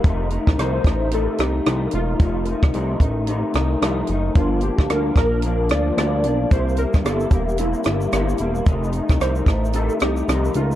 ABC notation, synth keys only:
X:1
M:4/4
L:1/8
Q:"Swing 16ths" 1/4=111
K:Fmix
V:1 name="Synth keys"
z2 c2 A G2 F- | F2 z6 | F G B B2 d d2 | c B A G =E3 z |
z2 c2 A G2 F |]